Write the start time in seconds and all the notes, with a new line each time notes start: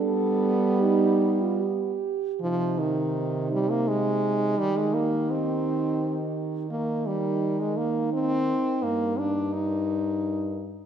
Already playing: G3 B3 D4 A4
0.80 D#4 G4
1.41 F4
1.61 G4
2.41 C3 F3 D#4
2.79 D#3
3.52 G3
3.70 A#3
3.88 G#3
4.57 D#3 G3 G4
4.77 G#3
4.94 A#3
5.30 C4
6.69 A#3 D#4 A#4
7.07 G3
7.60 G#3
7.77 A#3
8.13 C4
8.83 G2 A#3
9.19 D4
9.53 D#4